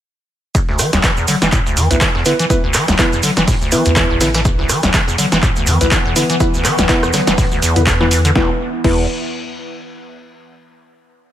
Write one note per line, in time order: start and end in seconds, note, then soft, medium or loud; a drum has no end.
0.55 0.60 E2 medium
0.55 kick loud
0.55 closed hi-hat medium
0.55 tambourine medium
0.55 shaker medium
0.69 0.81 D2 medium
0.69 snare soft
0.79 0.91 E3 medium
0.79 cross-stick medium
0.79 open hi-hat loud
0.79 tambourine medium
0.79 shaker medium
0.93 1.02 E1 loud
0.93 0.99 D2 loud
0.93 snare medium
0.93 closed hi-hat medium
0.93 low conga medium
0.93 shaker soft
1.03 1.11 E3 medium
1.03 kick loud
1.03 snare loud
1.03 clap loud
1.03 closed hi-hat medium
1.03 tambourine medium
1.03 shaker soft
1.17 1.26 E1 medium
1.17 1.26 E2 medium
1.17 shaker soft
1.28 1.36 D3 medium
1.28 open hi-hat medium
1.28 tambourine medium
1.28 low conga medium
1.28 shaker medium
1.42 1.50 E1 medium
1.42 1.48 E3 loud
1.42 snare medium
1.42 closed hi-hat medium
1.42 shaker soft
1.52 1.60 A2 medium
1.52 kick loud
1.52 clap medium
1.52 closed hi-hat medium
1.52 tambourine medium
1.52 shaker medium
1.66 1.78 D2 medium
1.66 shaker soft
1.77 1.88 E2 loud
1.77 1.88 E3 medium
1.77 open hi-hat loud
1.77 tambourine medium
1.77 shaker medium
1.91 1.99 B1 medium
1.91 1.97 D2 loud
1.91 1.99 B3 medium
1.91 1.99 E4 medium
1.91 1.99 B4 medium
1.91 closed hi-hat medium
1.91 shaker soft
2.01 2.09 E3 medium
2.01 kick loud
2.01 snare loud
2.01 clap loud
2.01 closed hi-hat medium
2.01 tambourine medium
2.01 shaker soft
2.15 2.24 E2 medium
2.15 snare medium
2.25 2.33 D3 medium
2.25 2.33 B3 medium
2.25 2.33 E4 medium
2.25 2.33 B4 loud
2.25 open hi-hat medium
2.25 tambourine medium
2.25 shaker medium
2.39 2.45 E3 loud
2.39 closed hi-hat medium
2.39 shaker soft
2.50 2.55 E2 medium
2.50 2.57 B3 medium
2.50 2.57 E4 medium
2.50 2.57 B4 medium
2.50 kick loud
2.50 closed hi-hat medium
2.50 tambourine medium
2.50 shaker medium
2.64 2.76 D2 medium
2.74 2.86 E3 medium
2.74 cross-stick medium
2.74 clap medium
2.74 open hi-hat loud
2.74 tambourine medium
2.74 shaker loud
2.88 2.97 E1 loud
2.88 2.94 D2 loud
2.88 snare medium
2.88 closed hi-hat medium
2.88 low conga medium
2.88 shaker soft
2.99 3.07 E3 medium
2.99 3.10 B3 medium
2.99 3.10 E4 medium
2.99 3.10 B4 loud
2.99 kick loud
2.99 snare loud
2.99 clap loud
2.99 closed hi-hat medium
2.99 tambourine medium
2.99 shaker medium
3.13 3.21 E1 medium
3.13 3.22 E2 medium
3.13 shaker soft
3.23 3.31 D3 medium
3.23 open hi-hat loud
3.23 tambourine medium
3.23 low conga medium
3.23 shaker medium
3.37 3.46 E1 medium
3.37 3.43 E3 loud
3.37 snare medium
3.37 closed hi-hat medium
3.37 low conga medium
3.37 shaker soft
3.48 3.55 A2 medium
3.48 kick loud
3.48 closed hi-hat medium
3.48 open hi-hat medium
3.48 shaker medium
3.61 3.74 D2 medium
3.61 shaker soft
3.71 3.84 E3 medium
3.71 4.18 B3 medium
3.71 4.18 E4 medium
3.71 4.18 B4 loud
3.71 open hi-hat loud
3.71 tambourine medium
3.71 shaker medium
3.85 3.92 D2 loud
3.85 4.05 E2 medium
3.85 closed hi-hat medium
3.85 shaker soft
3.96 4.04 E3 medium
3.96 kick loud
3.96 snare loud
3.96 clap loud
3.96 closed hi-hat medium
3.96 tambourine medium
3.96 shaker medium
4.10 4.66 A1 loud
4.10 4.19 E2 medium
4.21 4.28 D3 medium
4.21 4.28 B3 medium
4.21 4.28 E4 medium
4.21 4.28 B4 medium
4.21 snare loud
4.21 open hi-hat medium
4.21 tambourine medium
4.21 shaker loud
4.34 4.41 E3 loud
4.34 snare loud
4.34 closed hi-hat medium
4.34 tambourine medium
4.34 shaker soft
4.45 4.50 E2 medium
4.45 8.32 E3 medium
4.45 8.32 B3 medium
4.45 8.32 B4 medium
4.45 kick loud
4.45 closed hi-hat medium
4.45 tambourine medium
4.45 shaker medium
4.59 4.71 D2 medium
4.59 snare soft
4.69 4.81 E3 medium
4.69 cross-stick medium
4.69 open hi-hat loud
4.69 tambourine medium
4.69 shaker loud
4.83 4.92 E1 loud
4.83 4.89 D2 loud
4.83 snare medium
4.83 closed hi-hat medium
4.83 low conga medium
4.83 shaker soft
4.94 5.02 E3 medium
4.94 kick loud
4.94 snare loud
4.94 clap loud
4.94 closed hi-hat medium
4.94 tambourine medium
4.94 shaker medium
5.08 5.16 E1 medium
5.08 5.17 E2 medium
5.08 shaker soft
5.18 5.26 D3 medium
5.18 open hi-hat loud
5.18 tambourine medium
5.18 low conga medium
5.18 shaker medium
5.32 5.41 E1 medium
5.32 5.38 E3 loud
5.32 snare medium
5.32 closed hi-hat medium
5.32 shaker soft
5.43 5.50 A2 medium
5.43 kick loud
5.43 clap medium
5.43 closed hi-hat medium
5.43 tambourine medium
5.43 shaker medium
5.56 5.69 D2 medium
5.56 shaker soft
5.67 5.78 E2 loud
5.67 5.79 E3 medium
5.67 open hi-hat loud
5.67 tambourine medium
5.67 shaker loud
5.81 5.89 B1 medium
5.81 5.87 D2 loud
5.81 5.90 B3 medium
5.81 5.90 E4 medium
5.81 5.90 B4 medium
5.81 closed hi-hat medium
5.81 shaker soft
5.91 5.99 E3 medium
5.91 kick loud
5.91 snare loud
5.91 clap loud
5.91 closed hi-hat soft
5.91 tambourine medium
5.91 shaker medium
6.05 6.14 E2 medium
6.16 6.24 D3 medium
6.16 6.23 B3 medium
6.16 6.23 E4 medium
6.16 6.23 B4 loud
6.16 open hi-hat loud
6.16 tambourine medium
6.16 shaker medium
6.30 6.36 E3 loud
6.30 closed hi-hat medium
6.30 shaker soft
6.40 6.45 E2 medium
6.40 6.47 B3 medium
6.40 6.47 E4 medium
6.40 6.47 B4 medium
6.40 kick loud
6.40 closed hi-hat medium
6.40 tambourine medium
6.40 shaker medium
6.54 6.66 D2 medium
6.54 shaker soft
6.65 6.76 E3 medium
6.65 cross-stick medium
6.65 clap medium
6.65 open hi-hat loud
6.65 tambourine medium
6.65 shaker loud
6.78 6.87 E1 loud
6.78 6.84 D2 loud
6.78 snare medium
6.78 closed hi-hat medium
6.78 low conga loud
6.78 shaker soft
6.89 6.97 E3 medium
6.89 7.00 B3 loud
6.89 7.00 E4 medium
6.89 7.00 B4 loud
6.89 kick loud
6.89 snare loud
6.89 clap loud
6.89 closed hi-hat soft
6.89 tambourine medium
6.89 shaker medium
7.03 7.11 E1 medium
7.03 7.12 E2 medium
7.03 cross-stick medium
7.03 shaker soft
7.13 7.21 D3 medium
7.13 snare loud
7.13 open hi-hat medium
7.13 tambourine medium
7.13 low conga medium
7.13 shaker medium
7.27 7.36 E1 medium
7.27 7.33 E3 loud
7.27 snare medium
7.27 closed hi-hat medium
7.27 low conga medium
7.27 shaker soft
7.38 7.45 A2 medium
7.38 kick loud
7.38 closed hi-hat medium
7.38 open hi-hat medium
7.38 shaker medium
7.51 7.61 D2 medium
7.51 shaker soft
7.62 7.78 E2 loud
7.62 open hi-hat loud
7.62 tambourine medium
7.62 shaker medium
7.76 8.32 E2 medium
7.76 7.85 E3 medium
7.76 7.82 B3 medium
7.76 7.81 E4 medium
7.76 7.81 B4 loud
7.76 closed hi-hat medium
7.76 shaker soft
7.87 7.94 E2 medium
7.87 kick loud
7.87 snare loud
7.87 clap loud
7.87 closed hi-hat soft
7.87 tambourine medium
7.87 shaker medium
8.00 8.06 E3 loud
8.00 8.09 B3 medium
8.00 8.09 E4 medium
8.00 8.09 B4 loud
8.00 snare soft
8.11 8.19 E3 medium
8.11 open hi-hat medium
8.11 tambourine medium
8.11 shaker loud
8.25 8.31 D3 loud
8.25 closed hi-hat medium
8.25 closed hi-hat soft
8.25 shaker soft
8.35 8.50 E1 medium
8.35 8.50 E2 loud
8.35 8.50 B3 medium
8.35 8.50 E4 medium
8.35 8.50 B4 loud
8.35 kick loud
8.35 snare medium
8.84 9.07 E1 loud
8.84 9.07 E2 medium
8.84 9.03 B3 medium
8.84 9.03 E4 medium
8.84 9.03 B4 loud
8.84 kick loud
8.84 crash medium